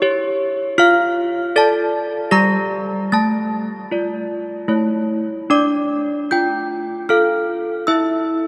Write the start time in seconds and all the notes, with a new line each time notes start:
Already playing: E4 C#6
0.02 G4 C#5
0.78 F4 F5 F6
1.56 A4 D5 A5 A6
2.31 G3 G4 D5 A#5 A#6
3.12 A3 A5 A6
3.91 F4 D5
4.68 A3 E4 C#5
5.50 D4 D5 D6
6.31 F4 G5 G6
7.09 F4 A4 F5 F6
7.87 E4 E5 E6